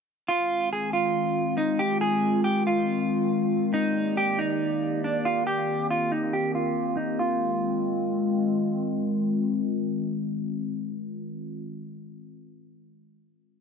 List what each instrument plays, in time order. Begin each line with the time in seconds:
0.28 ambient pad D#3 G#3 C4 F4, clean electric guitar F4
0.73 clean electric guitar G#4
0.93 clean electric guitar F4
1.57 clean electric guitar D#4
1.79 clean electric guitar G4
2.01 clean electric guitar G#4
2.44 clean electric guitar G4
2.67 clean electric guitar F4
3.74 ambient pad A#3 G4 D5, clean electric guitar D#4
4.17 clean electric guitar G4
4.39 clean electric guitar D#4
5.04 clean electric guitar D4
5.25 clean electric guitar F4
5.47 ambient pad D#3 C4 G4, clean electric guitar G4
5.91 clean electric guitar F4
6.12 clean electric guitar D#4
6.33 clean electric guitar G4
6.55 clean electric guitar F4
6.97 clean electric guitar D#4
7.19 ambient pad D#3 G#3 C4 F4, clean electric guitar F4